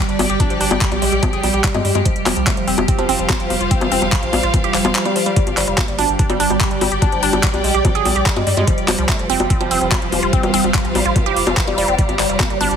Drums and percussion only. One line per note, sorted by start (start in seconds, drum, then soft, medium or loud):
0.09 closed hi-hat soft
0.19 open hi-hat medium
0.19 high bongo medium
0.30 closed hi-hat soft
0.40 kick loud
0.40 closed hi-hat medium
0.40 high bongo soft
0.50 closed hi-hat soft
0.61 open hi-hat loud
0.71 closed hi-hat soft
0.71 high bongo medium
0.81 kick loud
0.81 clap loud
0.81 closed hi-hat medium
0.92 closed hi-hat soft
0.92 high bongo soft
1.02 open hi-hat medium
1.12 closed hi-hat soft
1.23 kick loud
1.23 closed hi-hat loud
1.23 high bongo medium
1.33 closed hi-hat soft
1.43 open hi-hat loud
1.43 high bongo soft
1.54 closed hi-hat soft
1.64 kick loud
1.64 clap loud
1.64 closed hi-hat medium
1.74 closed hi-hat soft
1.74 high bongo medium
1.85 open hi-hat medium
1.95 closed hi-hat soft
1.95 high bongo soft
2.05 kick loud
2.05 closed hi-hat loud
2.16 closed hi-hat soft
2.26 clap medium
2.26 open hi-hat loud
2.26 high bongo medium
2.37 closed hi-hat soft
2.47 kick loud
2.47 clap loud
2.47 closed hi-hat medium
2.47 high bongo soft
2.57 closed hi-hat soft
2.68 open hi-hat medium
2.78 closed hi-hat soft
2.78 high bongo medium
2.88 kick loud
2.88 closed hi-hat loud
2.99 closed hi-hat soft
2.99 high bongo soft
3.09 open hi-hat loud
3.19 closed hi-hat soft
3.30 kick loud
3.30 clap loud
3.30 closed hi-hat loud
3.30 high bongo medium
3.40 closed hi-hat soft
3.50 open hi-hat medium
3.50 high bongo soft
3.61 closed hi-hat soft
3.71 kick loud
3.71 closed hi-hat loud
3.81 closed hi-hat soft
3.81 high bongo medium
3.92 open hi-hat loud
4.02 closed hi-hat soft
4.02 high bongo soft
4.12 kick loud
4.12 clap loud
4.12 closed hi-hat medium
4.23 closed hi-hat soft
4.33 open hi-hat medium
4.33 high bongo medium
4.43 closed hi-hat soft
4.54 kick loud
4.54 closed hi-hat loud
4.54 high bongo soft
4.64 closed hi-hat soft
4.74 clap medium
4.74 open hi-hat loud
4.85 closed hi-hat soft
4.85 high bongo medium
4.95 clap loud
4.95 closed hi-hat loud
5.05 closed hi-hat soft
5.05 high bongo soft
5.16 open hi-hat medium
5.26 closed hi-hat soft
5.36 kick loud
5.36 closed hi-hat loud
5.47 closed hi-hat soft
5.47 high bongo soft
5.57 clap medium
5.57 open hi-hat loud
5.67 closed hi-hat soft
5.78 kick loud
5.78 clap loud
5.78 closed hi-hat loud
5.78 high bongo medium
5.88 closed hi-hat soft
5.99 open hi-hat medium
5.99 high bongo soft
6.09 closed hi-hat soft
6.19 kick loud
6.19 closed hi-hat loud
6.30 closed hi-hat soft
6.30 high bongo medium
6.40 open hi-hat loud
6.50 closed hi-hat soft
6.50 high bongo soft
6.61 kick loud
6.61 clap loud
6.61 closed hi-hat loud
6.71 closed hi-hat soft
6.81 open hi-hat medium
6.81 high bongo medium
6.92 closed hi-hat soft
7.02 kick loud
7.02 closed hi-hat loud
7.02 high bongo soft
7.12 closed hi-hat soft
7.23 open hi-hat loud
7.33 closed hi-hat soft
7.33 high bongo medium
7.43 kick loud
7.43 clap loud
7.43 closed hi-hat medium
7.54 closed hi-hat soft
7.54 high bongo soft
7.64 open hi-hat medium
7.74 closed hi-hat soft
7.85 kick loud
7.85 closed hi-hat medium
7.85 high bongo medium
7.95 closed hi-hat soft
8.05 open hi-hat loud
8.05 high bongo soft
8.16 closed hi-hat soft
8.26 kick loud
8.26 clap loud
8.26 closed hi-hat medium
8.36 closed hi-hat soft
8.36 high bongo medium
8.47 open hi-hat loud
8.57 closed hi-hat soft
8.57 high bongo soft
8.67 kick loud
8.67 closed hi-hat medium
8.78 closed hi-hat soft
8.88 clap medium
8.88 open hi-hat loud
8.88 high bongo medium
8.99 closed hi-hat soft
9.09 kick loud
9.09 clap loud
9.09 closed hi-hat medium
9.09 high bongo soft
9.19 closed hi-hat soft
9.30 open hi-hat loud
9.40 closed hi-hat soft
9.40 high bongo medium
9.50 kick loud
9.50 closed hi-hat loud
9.61 closed hi-hat soft
9.61 high bongo soft
9.71 open hi-hat loud
9.81 closed hi-hat soft
9.92 kick loud
9.92 clap loud
9.92 closed hi-hat medium
9.92 high bongo medium
10.02 closed hi-hat soft
10.12 open hi-hat loud
10.12 high bongo soft
10.23 closed hi-hat soft
10.33 kick loud
10.33 closed hi-hat medium
10.43 closed hi-hat soft
10.43 high bongo medium
10.54 open hi-hat loud
10.64 high bongo soft
10.74 kick loud
10.74 clap loud
10.74 closed hi-hat medium
10.85 closed hi-hat soft
10.95 open hi-hat medium
10.95 high bongo medium
11.05 closed hi-hat soft
11.16 kick loud
11.16 closed hi-hat medium
11.16 high bongo soft
11.26 closed hi-hat soft
11.36 open hi-hat loud
11.47 closed hi-hat soft
11.47 high bongo medium
11.57 kick loud
11.57 clap loud
11.57 closed hi-hat medium
11.67 closed hi-hat soft
11.67 high bongo soft
11.78 open hi-hat loud
11.88 closed hi-hat soft
11.99 kick loud
11.99 closed hi-hat medium
12.09 closed hi-hat soft
12.09 high bongo soft
12.19 clap medium
12.19 open hi-hat loud
12.30 closed hi-hat soft
12.40 kick loud
12.40 clap loud
12.40 closed hi-hat medium
12.40 high bongo medium
12.50 closed hi-hat soft
12.61 open hi-hat medium
12.61 high bongo soft
12.71 closed hi-hat soft